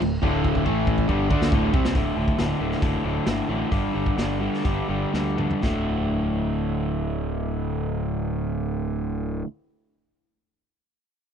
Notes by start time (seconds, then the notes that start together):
0.01 D1 D2 A2, crash
0.22 D1 D2 A2 D3, kick
0.44 kick
0.55 kick
0.65 A1 A2 E3 A3, kick
0.87 kick
0.98 kick
1.09 G1 G2 D3 G3, kick
1.30 D2 D3 A3 D4, kick
1.42 snare
1.52 D1 D2 A2 D3, kick
1.74 C2 C3 G3 C4, kick
1.85 snare
1.95 D1 D2 A2 D3, kick, open hi-hat
2.17 D1 D2 A2 D3
2.28 kick
2.38 D1 D2 A2 D3, snare, open hi-hat
2.60 D1 D2 A2 D3
2.71 snare
2.82 F#1 D2 A2 D3, kick, open hi-hat
3.04 D1 D2 A2 D3
3.26 G1 D2 A2 D3, snare, open hi-hat
3.49 A1 D2 A2 D3
3.71 G1 G2 D3 G3, kick, open hi-hat
3.94 G1 G2 D3 G3
4.06 kick
4.18 G1 G2 D3 G3, snare, open hi-hat
4.41 G2 D3 G3
4.54 snare
4.65 G1 G2 D3 G3, kick, open hi-hat
4.89 G1 G2 D3 G3
5.13 D2 G2 D3 G3, snare
5.37 G2 D3 G3, mid tom
5.51 floor tom
5.61 D1 D2 A2 D3 A3 F#4, kick, snare